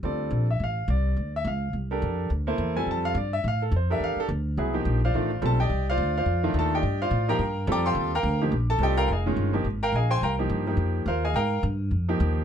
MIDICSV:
0, 0, Header, 1, 4, 480
1, 0, Start_track
1, 0, Tempo, 283152
1, 54, Time_signature, 4, 2, 24, 8
1, 21093, End_track
2, 0, Start_track
2, 0, Title_t, "Grand piano"
2, 0, Program_c, 0, 0
2, 56, Note_on_c, 0, 55, 45
2, 58, Note_on_c, 0, 60, 45
2, 65, Note_on_c, 0, 65, 43
2, 72, Note_on_c, 0, 69, 50
2, 86, Note_on_c, 0, 74, 71
2, 763, Note_off_c, 0, 55, 0
2, 764, Note_off_c, 0, 60, 0
2, 767, Note_off_c, 0, 65, 0
2, 771, Note_off_c, 0, 69, 0
2, 782, Note_off_c, 0, 74, 0
2, 857, Note_on_c, 0, 76, 70
2, 1030, Note_off_c, 0, 76, 0
2, 1078, Note_on_c, 0, 77, 80
2, 1497, Note_off_c, 0, 77, 0
2, 1527, Note_on_c, 0, 74, 69
2, 2225, Note_off_c, 0, 74, 0
2, 2310, Note_on_c, 0, 76, 88
2, 2479, Note_off_c, 0, 76, 0
2, 2500, Note_on_c, 0, 77, 71
2, 2929, Note_off_c, 0, 77, 0
2, 3237, Note_on_c, 0, 67, 57
2, 3237, Note_on_c, 0, 69, 64
2, 3242, Note_on_c, 0, 62, 58
2, 3251, Note_on_c, 0, 70, 69
2, 3870, Note_off_c, 0, 67, 0
2, 3870, Note_off_c, 0, 69, 0
2, 3873, Note_off_c, 0, 62, 0
2, 3877, Note_off_c, 0, 70, 0
2, 4187, Note_on_c, 0, 58, 74
2, 4192, Note_on_c, 0, 64, 68
2, 4196, Note_on_c, 0, 72, 79
2, 4197, Note_on_c, 0, 69, 67
2, 4639, Note_off_c, 0, 58, 0
2, 4642, Note_off_c, 0, 64, 0
2, 4644, Note_off_c, 0, 69, 0
2, 4644, Note_off_c, 0, 72, 0
2, 4677, Note_on_c, 0, 55, 62
2, 4682, Note_on_c, 0, 65, 58
2, 4685, Note_on_c, 0, 60, 56
2, 4686, Note_on_c, 0, 69, 74
2, 4689, Note_on_c, 0, 80, 89
2, 4870, Note_off_c, 0, 80, 0
2, 4931, Note_on_c, 0, 81, 86
2, 5173, Note_off_c, 0, 81, 0
2, 5174, Note_on_c, 0, 77, 97
2, 5311, Note_off_c, 0, 55, 0
2, 5314, Note_off_c, 0, 65, 0
2, 5315, Note_off_c, 0, 60, 0
2, 5316, Note_off_c, 0, 69, 0
2, 5353, Note_off_c, 0, 77, 0
2, 5384, Note_on_c, 0, 74, 64
2, 5639, Note_off_c, 0, 74, 0
2, 5649, Note_on_c, 0, 76, 88
2, 5831, Note_off_c, 0, 76, 0
2, 5896, Note_on_c, 0, 77, 88
2, 6136, Note_off_c, 0, 77, 0
2, 6140, Note_on_c, 0, 69, 70
2, 6317, Note_off_c, 0, 69, 0
2, 6379, Note_on_c, 0, 72, 65
2, 6615, Note_on_c, 0, 69, 66
2, 6618, Note_off_c, 0, 72, 0
2, 6619, Note_on_c, 0, 67, 65
2, 6623, Note_on_c, 0, 62, 65
2, 6629, Note_on_c, 0, 70, 75
2, 6646, Note_on_c, 0, 76, 82
2, 6810, Note_off_c, 0, 76, 0
2, 6845, Note_on_c, 0, 77, 92
2, 7091, Note_off_c, 0, 77, 0
2, 7092, Note_off_c, 0, 69, 0
2, 7117, Note_on_c, 0, 69, 92
2, 7222, Note_off_c, 0, 69, 0
2, 7242, Note_off_c, 0, 67, 0
2, 7245, Note_off_c, 0, 62, 0
2, 7247, Note_off_c, 0, 70, 0
2, 7761, Note_on_c, 0, 54, 61
2, 7765, Note_on_c, 0, 59, 57
2, 7769, Note_on_c, 0, 68, 68
2, 7770, Note_on_c, 0, 64, 59
2, 8008, Note_off_c, 0, 54, 0
2, 8010, Note_off_c, 0, 59, 0
2, 8012, Note_off_c, 0, 68, 0
2, 8013, Note_off_c, 0, 64, 0
2, 8034, Note_on_c, 0, 53, 65
2, 8036, Note_on_c, 0, 58, 59
2, 8042, Note_on_c, 0, 63, 57
2, 8044, Note_on_c, 0, 67, 71
2, 8456, Note_off_c, 0, 53, 0
2, 8457, Note_off_c, 0, 58, 0
2, 8459, Note_off_c, 0, 63, 0
2, 8460, Note_off_c, 0, 67, 0
2, 8555, Note_on_c, 0, 65, 65
2, 8555, Note_on_c, 0, 74, 66
2, 8557, Note_on_c, 0, 77, 79
2, 8565, Note_on_c, 0, 72, 66
2, 8709, Note_off_c, 0, 65, 0
2, 8725, Note_on_c, 0, 57, 61
2, 8727, Note_on_c, 0, 51, 66
2, 8735, Note_on_c, 0, 65, 72
2, 8736, Note_on_c, 0, 62, 62
2, 8970, Note_off_c, 0, 57, 0
2, 8971, Note_off_c, 0, 51, 0
2, 8975, Note_off_c, 0, 65, 0
2, 8976, Note_off_c, 0, 62, 0
2, 9164, Note_off_c, 0, 74, 0
2, 9165, Note_off_c, 0, 77, 0
2, 9169, Note_off_c, 0, 72, 0
2, 9183, Note_on_c, 0, 55, 71
2, 9188, Note_on_c, 0, 60, 63
2, 9190, Note_on_c, 0, 65, 59
2, 9191, Note_on_c, 0, 69, 73
2, 9230, Note_off_c, 0, 69, 0
2, 9248, Note_on_c, 0, 81, 97
2, 9256, Note_on_c, 0, 69, 75
2, 9439, Note_off_c, 0, 55, 0
2, 9442, Note_off_c, 0, 60, 0
2, 9443, Note_off_c, 0, 65, 0
2, 9492, Note_on_c, 0, 79, 84
2, 9493, Note_off_c, 0, 81, 0
2, 9497, Note_off_c, 0, 69, 0
2, 9501, Note_on_c, 0, 74, 73
2, 9503, Note_on_c, 0, 67, 67
2, 9512, Note_on_c, 0, 75, 76
2, 9928, Note_off_c, 0, 79, 0
2, 9933, Note_off_c, 0, 74, 0
2, 9934, Note_off_c, 0, 67, 0
2, 9939, Note_off_c, 0, 75, 0
2, 9994, Note_on_c, 0, 77, 98
2, 10011, Note_on_c, 0, 74, 77
2, 10013, Note_on_c, 0, 72, 69
2, 10019, Note_on_c, 0, 65, 79
2, 10420, Note_off_c, 0, 77, 0
2, 10429, Note_off_c, 0, 74, 0
2, 10430, Note_off_c, 0, 72, 0
2, 10433, Note_off_c, 0, 65, 0
2, 10468, Note_on_c, 0, 77, 79
2, 10480, Note_on_c, 0, 74, 63
2, 10484, Note_on_c, 0, 72, 61
2, 10489, Note_on_c, 0, 65, 63
2, 10893, Note_off_c, 0, 65, 0
2, 10907, Note_on_c, 0, 51, 79
2, 10911, Note_on_c, 0, 57, 66
2, 10919, Note_on_c, 0, 65, 76
2, 10920, Note_on_c, 0, 62, 70
2, 11080, Note_off_c, 0, 77, 0
2, 11086, Note_off_c, 0, 74, 0
2, 11088, Note_off_c, 0, 72, 0
2, 11166, Note_on_c, 0, 81, 92
2, 11177, Note_on_c, 0, 69, 82
2, 11411, Note_off_c, 0, 81, 0
2, 11417, Note_off_c, 0, 69, 0
2, 11440, Note_on_c, 0, 74, 64
2, 11440, Note_on_c, 0, 79, 87
2, 11442, Note_on_c, 0, 67, 66
2, 11445, Note_on_c, 0, 75, 66
2, 11546, Note_off_c, 0, 51, 0
2, 11548, Note_off_c, 0, 57, 0
2, 11551, Note_off_c, 0, 65, 0
2, 11552, Note_off_c, 0, 62, 0
2, 11862, Note_off_c, 0, 74, 0
2, 11862, Note_off_c, 0, 79, 0
2, 11863, Note_off_c, 0, 67, 0
2, 11865, Note_off_c, 0, 75, 0
2, 11896, Note_on_c, 0, 77, 89
2, 11902, Note_on_c, 0, 72, 70
2, 11908, Note_on_c, 0, 65, 78
2, 11909, Note_on_c, 0, 74, 68
2, 12329, Note_off_c, 0, 77, 0
2, 12332, Note_off_c, 0, 72, 0
2, 12335, Note_off_c, 0, 65, 0
2, 12336, Note_off_c, 0, 74, 0
2, 12347, Note_on_c, 0, 58, 64
2, 12349, Note_on_c, 0, 53, 77
2, 12354, Note_on_c, 0, 63, 63
2, 12360, Note_on_c, 0, 67, 80
2, 12362, Note_on_c, 0, 82, 95
2, 12365, Note_on_c, 0, 70, 72
2, 12375, Note_on_c, 0, 79, 72
2, 12377, Note_on_c, 0, 77, 71
2, 12525, Note_off_c, 0, 58, 0
2, 12526, Note_off_c, 0, 53, 0
2, 12529, Note_off_c, 0, 63, 0
2, 12531, Note_off_c, 0, 67, 0
2, 12985, Note_off_c, 0, 82, 0
2, 12986, Note_off_c, 0, 70, 0
2, 12992, Note_off_c, 0, 79, 0
2, 12993, Note_off_c, 0, 77, 0
2, 13009, Note_on_c, 0, 55, 68
2, 13017, Note_on_c, 0, 65, 67
2, 13018, Note_on_c, 0, 69, 80
2, 13019, Note_on_c, 0, 60, 59
2, 13081, Note_on_c, 0, 82, 82
2, 13083, Note_on_c, 0, 74, 80
2, 13083, Note_on_c, 0, 86, 101
2, 13084, Note_on_c, 0, 79, 80
2, 13310, Note_off_c, 0, 79, 0
2, 13319, Note_on_c, 0, 84, 86
2, 13327, Note_off_c, 0, 82, 0
2, 13328, Note_off_c, 0, 74, 0
2, 13328, Note_off_c, 0, 86, 0
2, 13335, Note_on_c, 0, 79, 80
2, 13337, Note_on_c, 0, 77, 69
2, 13340, Note_on_c, 0, 72, 73
2, 13722, Note_off_c, 0, 55, 0
2, 13726, Note_off_c, 0, 65, 0
2, 13726, Note_off_c, 0, 69, 0
2, 13727, Note_off_c, 0, 60, 0
2, 13759, Note_off_c, 0, 84, 0
2, 13768, Note_off_c, 0, 79, 0
2, 13769, Note_off_c, 0, 77, 0
2, 13770, Note_off_c, 0, 72, 0
2, 13817, Note_on_c, 0, 82, 98
2, 13822, Note_on_c, 0, 77, 84
2, 13826, Note_on_c, 0, 70, 79
2, 13826, Note_on_c, 0, 79, 81
2, 14249, Note_off_c, 0, 82, 0
2, 14251, Note_off_c, 0, 77, 0
2, 14253, Note_off_c, 0, 70, 0
2, 14253, Note_off_c, 0, 79, 0
2, 14267, Note_on_c, 0, 53, 68
2, 14267, Note_on_c, 0, 58, 66
2, 14268, Note_on_c, 0, 63, 61
2, 14270, Note_on_c, 0, 67, 75
2, 14444, Note_off_c, 0, 53, 0
2, 14444, Note_off_c, 0, 58, 0
2, 14444, Note_off_c, 0, 63, 0
2, 14445, Note_off_c, 0, 67, 0
2, 14746, Note_on_c, 0, 81, 105
2, 14755, Note_on_c, 0, 69, 91
2, 14920, Note_off_c, 0, 69, 0
2, 14934, Note_on_c, 0, 55, 65
2, 14934, Note_on_c, 0, 60, 56
2, 14937, Note_off_c, 0, 81, 0
2, 14946, Note_on_c, 0, 69, 69
2, 14948, Note_on_c, 0, 65, 58
2, 14965, Note_on_c, 0, 74, 67
2, 14971, Note_on_c, 0, 67, 72
2, 14972, Note_on_c, 0, 75, 71
2, 14972, Note_on_c, 0, 79, 92
2, 15186, Note_off_c, 0, 79, 0
2, 15211, Note_on_c, 0, 79, 78
2, 15213, Note_on_c, 0, 82, 111
2, 15217, Note_on_c, 0, 70, 82
2, 15218, Note_on_c, 0, 77, 79
2, 15227, Note_off_c, 0, 74, 0
2, 15231, Note_off_c, 0, 67, 0
2, 15231, Note_off_c, 0, 75, 0
2, 15348, Note_off_c, 0, 79, 0
2, 15410, Note_off_c, 0, 82, 0
2, 15412, Note_off_c, 0, 70, 0
2, 15412, Note_off_c, 0, 77, 0
2, 15417, Note_off_c, 0, 55, 0
2, 15417, Note_off_c, 0, 60, 0
2, 15423, Note_off_c, 0, 69, 0
2, 15424, Note_off_c, 0, 65, 0
2, 15464, Note_on_c, 0, 80, 68
2, 15469, Note_on_c, 0, 68, 57
2, 15476, Note_on_c, 0, 75, 60
2, 15476, Note_on_c, 0, 77, 57
2, 15698, Note_on_c, 0, 51, 69
2, 15706, Note_on_c, 0, 56, 62
2, 15710, Note_on_c, 0, 61, 68
2, 15711, Note_on_c, 0, 65, 73
2, 15717, Note_off_c, 0, 80, 0
2, 15720, Note_off_c, 0, 68, 0
2, 15723, Note_off_c, 0, 75, 0
2, 15723, Note_off_c, 0, 77, 0
2, 16152, Note_off_c, 0, 51, 0
2, 16156, Note_off_c, 0, 56, 0
2, 16158, Note_off_c, 0, 61, 0
2, 16158, Note_on_c, 0, 58, 64
2, 16159, Note_off_c, 0, 65, 0
2, 16161, Note_on_c, 0, 53, 72
2, 16171, Note_on_c, 0, 67, 74
2, 16174, Note_on_c, 0, 63, 61
2, 16348, Note_off_c, 0, 58, 0
2, 16350, Note_off_c, 0, 53, 0
2, 16355, Note_off_c, 0, 67, 0
2, 16356, Note_off_c, 0, 63, 0
2, 16660, Note_on_c, 0, 82, 102
2, 16663, Note_on_c, 0, 70, 87
2, 16668, Note_on_c, 0, 79, 86
2, 16673, Note_on_c, 0, 77, 87
2, 16853, Note_off_c, 0, 82, 0
2, 16854, Note_off_c, 0, 70, 0
2, 16857, Note_off_c, 0, 79, 0
2, 16859, Note_off_c, 0, 77, 0
2, 16878, Note_on_c, 0, 80, 77
2, 16879, Note_on_c, 0, 75, 62
2, 16891, Note_on_c, 0, 77, 56
2, 16892, Note_on_c, 0, 68, 59
2, 17118, Note_off_c, 0, 80, 0
2, 17131, Note_on_c, 0, 79, 82
2, 17133, Note_on_c, 0, 72, 81
2, 17139, Note_on_c, 0, 84, 97
2, 17144, Note_off_c, 0, 75, 0
2, 17144, Note_on_c, 0, 80, 76
2, 17150, Note_off_c, 0, 68, 0
2, 17150, Note_off_c, 0, 77, 0
2, 17328, Note_off_c, 0, 79, 0
2, 17329, Note_off_c, 0, 72, 0
2, 17332, Note_off_c, 0, 84, 0
2, 17335, Note_off_c, 0, 80, 0
2, 17344, Note_on_c, 0, 82, 95
2, 17358, Note_on_c, 0, 79, 74
2, 17359, Note_on_c, 0, 70, 69
2, 17364, Note_on_c, 0, 77, 68
2, 17512, Note_off_c, 0, 82, 0
2, 17522, Note_off_c, 0, 70, 0
2, 17522, Note_off_c, 0, 79, 0
2, 17526, Note_off_c, 0, 77, 0
2, 17609, Note_on_c, 0, 53, 66
2, 17614, Note_on_c, 0, 58, 60
2, 17619, Note_on_c, 0, 63, 63
2, 17621, Note_on_c, 0, 67, 73
2, 18065, Note_off_c, 0, 53, 0
2, 18067, Note_off_c, 0, 63, 0
2, 18068, Note_off_c, 0, 58, 0
2, 18070, Note_off_c, 0, 67, 0
2, 18090, Note_on_c, 0, 53, 65
2, 18093, Note_on_c, 0, 63, 60
2, 18094, Note_on_c, 0, 58, 57
2, 18095, Note_on_c, 0, 67, 66
2, 18734, Note_off_c, 0, 53, 0
2, 18735, Note_off_c, 0, 63, 0
2, 18736, Note_off_c, 0, 58, 0
2, 18736, Note_off_c, 0, 67, 0
2, 18776, Note_on_c, 0, 77, 80
2, 18781, Note_on_c, 0, 65, 64
2, 18790, Note_on_c, 0, 72, 68
2, 18795, Note_on_c, 0, 70, 70
2, 19042, Note_off_c, 0, 77, 0
2, 19054, Note_off_c, 0, 65, 0
2, 19058, Note_off_c, 0, 72, 0
2, 19061, Note_off_c, 0, 70, 0
2, 19065, Note_on_c, 0, 80, 85
2, 19067, Note_on_c, 0, 75, 71
2, 19067, Note_on_c, 0, 77, 69
2, 19073, Note_on_c, 0, 68, 66
2, 19233, Note_off_c, 0, 77, 0
2, 19251, Note_on_c, 0, 82, 99
2, 19252, Note_on_c, 0, 70, 81
2, 19252, Note_on_c, 0, 79, 84
2, 19255, Note_off_c, 0, 80, 0
2, 19256, Note_off_c, 0, 75, 0
2, 19258, Note_on_c, 0, 77, 80
2, 19259, Note_off_c, 0, 68, 0
2, 19701, Note_off_c, 0, 70, 0
2, 19701, Note_off_c, 0, 79, 0
2, 19701, Note_off_c, 0, 82, 0
2, 19705, Note_off_c, 0, 77, 0
2, 20487, Note_on_c, 0, 53, 71
2, 20492, Note_on_c, 0, 58, 65
2, 20493, Note_on_c, 0, 63, 66
2, 20495, Note_on_c, 0, 67, 81
2, 21093, Note_off_c, 0, 53, 0
2, 21093, Note_off_c, 0, 58, 0
2, 21093, Note_off_c, 0, 63, 0
2, 21093, Note_off_c, 0, 67, 0
2, 21093, End_track
3, 0, Start_track
3, 0, Title_t, "Upright bass"
3, 0, Program_c, 1, 32
3, 48, Note_on_c, 1, 38, 76
3, 507, Note_off_c, 1, 38, 0
3, 517, Note_on_c, 1, 34, 86
3, 993, Note_off_c, 1, 34, 0
3, 1012, Note_on_c, 1, 33, 74
3, 1481, Note_off_c, 1, 33, 0
3, 1488, Note_on_c, 1, 36, 90
3, 1960, Note_off_c, 1, 36, 0
3, 1975, Note_on_c, 1, 38, 73
3, 2444, Note_off_c, 1, 38, 0
3, 2451, Note_on_c, 1, 37, 89
3, 2922, Note_off_c, 1, 37, 0
3, 2934, Note_on_c, 1, 36, 69
3, 3404, Note_off_c, 1, 36, 0
3, 3423, Note_on_c, 1, 41, 86
3, 3889, Note_off_c, 1, 41, 0
3, 3899, Note_on_c, 1, 38, 84
3, 4362, Note_off_c, 1, 38, 0
3, 4373, Note_on_c, 1, 40, 89
3, 4845, Note_off_c, 1, 40, 0
3, 4856, Note_on_c, 1, 41, 73
3, 5321, Note_off_c, 1, 41, 0
3, 5331, Note_on_c, 1, 43, 92
3, 5804, Note_off_c, 1, 43, 0
3, 5830, Note_on_c, 1, 45, 83
3, 6287, Note_off_c, 1, 45, 0
3, 6297, Note_on_c, 1, 41, 89
3, 6768, Note_off_c, 1, 41, 0
3, 6776, Note_on_c, 1, 40, 71
3, 7044, Note_off_c, 1, 40, 0
3, 7265, Note_on_c, 1, 38, 89
3, 7732, Note_off_c, 1, 38, 0
3, 7752, Note_on_c, 1, 36, 79
3, 8215, Note_off_c, 1, 36, 0
3, 8225, Note_on_c, 1, 34, 85
3, 8692, Note_off_c, 1, 34, 0
3, 8711, Note_on_c, 1, 33, 69
3, 9175, Note_off_c, 1, 33, 0
3, 9186, Note_on_c, 1, 35, 90
3, 9644, Note_off_c, 1, 35, 0
3, 9654, Note_on_c, 1, 36, 78
3, 10118, Note_off_c, 1, 36, 0
3, 10128, Note_on_c, 1, 38, 87
3, 10598, Note_off_c, 1, 38, 0
3, 10608, Note_on_c, 1, 41, 74
3, 11075, Note_off_c, 1, 41, 0
3, 11086, Note_on_c, 1, 39, 90
3, 11561, Note_off_c, 1, 39, 0
3, 11575, Note_on_c, 1, 43, 86
3, 12038, Note_off_c, 1, 43, 0
3, 12048, Note_on_c, 1, 45, 92
3, 12513, Note_off_c, 1, 45, 0
3, 12523, Note_on_c, 1, 43, 80
3, 12999, Note_off_c, 1, 43, 0
3, 13006, Note_on_c, 1, 41, 99
3, 13463, Note_off_c, 1, 41, 0
3, 13473, Note_on_c, 1, 39, 87
3, 13946, Note_off_c, 1, 39, 0
3, 13956, Note_on_c, 1, 38, 100
3, 14426, Note_off_c, 1, 38, 0
3, 14436, Note_on_c, 1, 34, 88
3, 14882, Note_off_c, 1, 34, 0
3, 14892, Note_on_c, 1, 36, 89
3, 15381, Note_off_c, 1, 36, 0
3, 15394, Note_on_c, 1, 29, 81
3, 15863, Note_off_c, 1, 29, 0
3, 15873, Note_on_c, 1, 31, 80
3, 16337, Note_off_c, 1, 31, 0
3, 16348, Note_on_c, 1, 32, 74
3, 16808, Note_off_c, 1, 32, 0
3, 16819, Note_on_c, 1, 34, 83
3, 17300, Note_off_c, 1, 34, 0
3, 17310, Note_on_c, 1, 36, 81
3, 17780, Note_off_c, 1, 36, 0
3, 17790, Note_on_c, 1, 43, 88
3, 18243, Note_off_c, 1, 43, 0
3, 18253, Note_on_c, 1, 41, 81
3, 18733, Note_off_c, 1, 41, 0
3, 18743, Note_on_c, 1, 39, 92
3, 19211, Note_off_c, 1, 39, 0
3, 19221, Note_on_c, 1, 44, 84
3, 19704, Note_off_c, 1, 44, 0
3, 19714, Note_on_c, 1, 43, 97
3, 20178, Note_off_c, 1, 43, 0
3, 20188, Note_on_c, 1, 41, 79
3, 20668, Note_off_c, 1, 41, 0
3, 20682, Note_on_c, 1, 39, 96
3, 21093, Note_off_c, 1, 39, 0
3, 21093, End_track
4, 0, Start_track
4, 0, Title_t, "Muted upright bass strokes"
4, 7056, Note_on_c, 9, 29, 34
4, 7225, Note_off_c, 9, 29, 0
4, 21093, End_track
0, 0, End_of_file